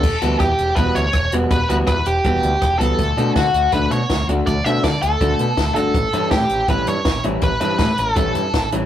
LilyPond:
<<
  \new Staff \with { instrumentName = "Lead electric guitar" } { \time 4/4 \key e \dorian \tempo 4 = 162 a'4 g'4 b'8 cis''4 r8 | b'8 b'8 b'8 g'2 a'8~ | a'4 fis'4 b'8 cis''4 r8 | d''8 e''8 d''8 a'2 a'8~ |
a'4 g'4 b'8 cis''4 r8 | b'8 b'8 b'8 a'2 r8 | }
  \new Staff \with { instrumentName = "Clean electric guitar" } { \time 4/4 \key e \dorian r8 <e g b fis'>8 r4 <e g b fis'>8 r4 <e g b fis'>8 | r8 <e g b fis'>8 r4 <e g b fis'>8 r4 <e g b fis'>8 | r8 <d a d' fis'>8 r4 <d a d' fis'>8 r4 <d a d' fis'>8 | r8 <d a d' fis'>8 r4 <d a d' fis'>8 r4 <d a d' fis'>8 |
r8 <e g cis' e'>8 r4 <e g cis' e'>8 r4 <e g cis' e'>8 | r8 <e g cis' e'>8 r4 <e g cis' e'>8 r4 <e g cis' e'>8 | }
  \new Staff \with { instrumentName = "Picked electric bass" } { \clef bass \time 4/4 \key e \dorian e,,8 d,8 e,8 e,,8 e,,8 d,8 e,,8 e,,8 | e,,8 d,8 e,8 e,,8 e,,8 d,8 e,,8 cis,8 | d,8 b,8 d8 d,8 d,8 b,8 d,8 d,8 | d,8 b,8 d8 d,8 d,8 b,8 d,8 g,,8 |
a,,8 g,8 a,8 a,,8 a,,8 g,8 a,,8 a,,8 | a,,8 g,8 a,8 a,,8 a,,8 g,8 a,,8 a,,8 | }
  \new DrumStaff \with { instrumentName = "Drums" } \drummode { \time 4/4 <cymc bd>8 hh8 <hh bd ss>8 hh8 <hh bd>8 hh8 <hh bd ss>8 hh8 | <hh bd>8 hh8 <hh bd ss>8 hh8 <hh bd>8 hh8 <hh bd ss>8 hh8 | <hh bd>8 hh8 <hh bd sn>8 hh8 <hh bd>8 hh8 <hh bd sn>8 hh8 | <hh bd>8 hh8 <hh bd sn>8 hh8 <hh bd>8 hh8 <hh bd sn>8 hh8 |
<hh bd>8 hh8 <hh bd sn>8 hh8 <hh bd>8 hh8 <hh bd sn>8 hh8 | <hh bd>8 hh8 <hh bd sn>8 hh8 <hh bd>8 hh8 <hh bd sn>8 hh8 | }
>>